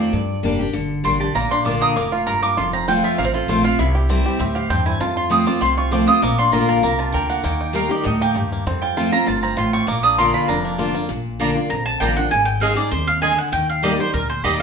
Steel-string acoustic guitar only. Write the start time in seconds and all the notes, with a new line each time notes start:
Already playing: C3 D#3 A3 C4 F4
0.13 G2
0.43 G3 A#3 D4 G4
0.59 D4 G4
0.73 D3
1.04 G3 A#3 D4 G4
1.20 D4 G4
1.35 A#2
1.65 D3 A#3 D4 F4
1.97 A2
2.27 G2
2.58 F2
2.88 F3 A3 C4 F4
3.19 C3
3.48 F3 A3 C4 F4
3.64 C4 F4
3.79 C3
4.09 E3 G3 C4 E4
4.39 A2
4.70 G2
5.00 F2
5.30 F3 A3 C4 F4
5.46 C4 F4
5.61 C3
5.91 F3 A3 C4 F4
6.07 C4 F4
6.22 A#2
6.52 D3 A#3 D4 F4
6.83 C3
7.12 D3
7.43 D#3
7.73 G3 A#3 D#4 G4
7.89 D#4 G4
8.04 A2
8.34 G2
8.67 F2
8.97 F3 A3 C4 F4
9.13 C4 F4
9.26 G2
9.57 A2
9.87 A#2
10.18 D3 A#3 D4 F4
10.48 F2
10.78 D3 A#3 D4 F4
10.94 D4 F4
11.09 A#2
11.40 D3 A#3 D4 F4
11.55 D4 F4
11.70 F2
12.01 D3 A#3 D4 F4
12.17 D4 F4
12.31 G#2
12.60 G#3 C4 D#4 G#4
12.76 D#4 G#4
12.92 C3
13.22 D3
13.52 D#3
13.83 G3 A#3 D#4 G4
13.99 D#4 G4
14.14 A#2
14.44 G3 A#3 D#4 G4